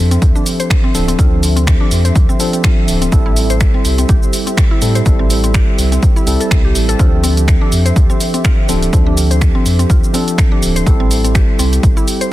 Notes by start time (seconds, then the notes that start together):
Already playing: F2 F3 C4 D4 G4 A4 C5 E5
0.11 C4, closed hi-hat, shaker
0.22 D2, kick, closed hi-hat, shaker
0.35 D4, shaker
0.46 open hi-hat, shaker
0.60 C5, closed hi-hat, shaker
0.70 finger snap, kick, closed hi-hat, shaker
0.84 C4
0.94 D1 F3 C4 D4 A4, open hi-hat, shaker
1.08 C4, closed hi-hat, shaker
1.18 D2 F3 C4 D4 F4 A4, kick, closed hi-hat, shaker
1.43 open hi-hat, shaker
1.56 C4, closed hi-hat, shaker
1.67 finger snap, kick, closed hi-hat, shaker
1.81 D4
1.91 F2, open hi-hat, shaker
2.05 C5, closed hi-hat, shaker
2.16 D2, kick, closed hi-hat, shaker
2.29 C4, shaker
2.39 F3 C4 D4 A4, open hi-hat, shaker
2.53 C4, closed hi-hat, shaker
2.64 F4, finger snap, kick, closed hi-hat, shaker
2.88 D1, open hi-hat, shaker
3.02 C4, closed hi-hat, shaker
3.12 A1 G3 C4 E4 A4, kick, closed hi-hat, shaker
3.26 E4
3.36 open hi-hat, shaker
3.50 C5, closed hi-hat, shaker
3.61 finger snap, kick, closed hi-hat, shaker
3.74 C4
3.85 C2, open hi-hat, shaker
3.98 C4, closed hi-hat, shaker
4.09 A1 G4, kick, closed hi-hat, shaker
4.23 shaker
4.33 open hi-hat, shaker
4.47 C4, closed hi-hat, shaker
4.57 finger snap, kick, closed hi-hat, shaker
4.71 E4
4.81 A2 G3 C4 E4 A4, open hi-hat, shaker
4.95 C5, closed hi-hat, shaker
5.05 A1 G3 C4 E4 A4, kick, closed hi-hat, shaker
5.19 C4
5.30 open hi-hat, shaker
5.44 C4, closed hi-hat, shaker
5.54 G4, finger snap, kick, closed hi-hat, shaker
5.78 C2, open hi-hat, shaker
5.92 C4, closed hi-hat, shaker
6.03 kick, closed hi-hat, shaker
6.16 E4, shaker
6.26 C2 G3 C4 E4 A4, open hi-hat, shaker
6.40 A4, closed hi-hat, shaker
6.51 C2, finger snap, kick, closed hi-hat, shaker
6.65 G4
6.75 A1, open hi-hat, shaker
6.89 A4, closed hi-hat, shaker
6.99 D2 F3 C4 D4 F4 A4, kick, closed hi-hat, shaker
7.24 C4, open hi-hat, shaker
7.37 closed hi-hat, shaker
7.48 finger snap, kick, closed hi-hat, shaker
7.61 D4
7.72 F2, open hi-hat, shaker
7.86 C5, closed hi-hat, shaker
7.96 D2, kick, closed hi-hat, shaker
8.10 C4, shaker
8.20 open hi-hat, shaker
8.34 C4, closed hi-hat, shaker
8.45 F4, finger snap, kick, closed hi-hat, shaker
8.69 D1 F3 C4 D4 A4, open hi-hat, shaker
8.83 closed hi-hat, shaker
8.92 D2 F3 C4 D4 A4, kick, closed hi-hat, shaker
9.07 D4
9.17 open hi-hat, shaker
9.31 C5, closed hi-hat, shaker
9.41 finger snap, kick, closed hi-hat, shaker
9.55 C4
9.66 F2, open hi-hat, shaker
9.79 C4, closed hi-hat, shaker
9.90 D2 F4, kick, closed hi-hat, shaker
10.04 shaker
10.13 F3 C4 D4 A4, open hi-hat, shaker
10.28 closed hi-hat, shaker
10.38 finger snap, kick, closed hi-hat, shaker
10.52 D4
10.62 D1, open hi-hat, shaker
10.76 C5, closed hi-hat, shaker
10.86 A1 G3 C4 E4 G4 A4, kick, closed hi-hat, shaker
11.00 C4
11.11 open hi-hat, shaker
11.24 C4, closed hi-hat, shaker
11.35 G4, finger snap, kick, closed hi-hat, shaker
11.59 C2 C4, open hi-hat, shaker
11.73 closed hi-hat, shaker
11.83 A1, kick, closed hi-hat, shaker
11.97 E4, shaker
12.08 open hi-hat, shaker
12.21 C5, closed hi-hat, shaker